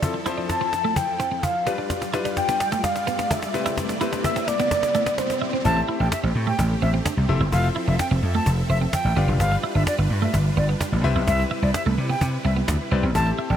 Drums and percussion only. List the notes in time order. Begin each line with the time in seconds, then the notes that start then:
0.03 cajon bass, cajon slap
0.14 cajon slap
0.26 cajon slap
0.38 cajon slap
0.49 cajon bass, cajon slap
0.73 cajon slap
0.84 cajon slap
0.96 cajon bass, cajon slap
1.08 cajon slap
1.20 cajon slap
1.31 cajon slap
1.43 cajon bass, cajon slap
1.55 cajon slap
1.67 cajon slap
1.78 cajon slap
1.90 cajon bass, cajon slap
2.02 cajon slap
2.14 cajon slap
2.25 cajon slap
2.37 cajon bass, cajon slap
2.49 cajon slap
2.60 cajon slap
2.72 cajon slap
2.84 cajon bass, cajon slap
2.96 cajon slap
3.07 cajon slap
3.19 cajon slap
3.31 cajon bass, cajon slap
3.42 cajon slap
3.54 cajon slap
3.66 cajon slap
3.77 cajon bass, cajon slap
3.89 cajon slap
4.01 cajon slap
4.13 cajon slap
4.24 cajon bass, cajon slap
4.36 cajon slap
4.48 cajon slap
4.60 cajon slap
4.71 cajon bass, cajon slap
4.83 cajon slap
4.95 cajon slap
5.06 cajon slap
5.18 cajon slap
5.30 cajon slap
5.42 cajon slap
5.53 cajon slap
5.65 cajon bass
5.88 cajon slap
6.00 cajon slap
6.12 cajon bass, cajon slap
6.35 cajon slap
6.47 cajon slap
6.59 cajon bass
6.70 cajon slap
6.82 cajon slap
6.94 cajon slap
7.06 cajon bass, cajon slap
7.17 cajon slap
7.29 cajon slap
7.41 cajon slap
7.52 cajon bass
7.76 cajon slap
7.88 cajon slap
7.99 cajon bass, cajon slap
8.11 cajon slap
8.23 cajon slap
8.34 cajon slap
8.46 cajon bass
8.58 cajon slap
8.81 cajon slap
8.93 cajon bass, cajon slap
9.28 cajon slap
9.40 cajon bass
9.63 cajon slap
9.75 cajon slap
9.87 cajon bass, cajon slap
9.99 cajon slap
10.10 cajon slap
10.22 cajon slap
10.34 cajon bass
10.69 cajon slap
10.81 cajon bass, cajon slap
10.92 cajon slap
11.16 cajon slap
11.27 cajon bass
11.74 cajon bass, cajon slap
12.21 cajon bass
12.68 cajon bass, cajon slap
13.15 cajon bass
13.27 cajon slap
13.38 cajon slap
13.50 cajon slap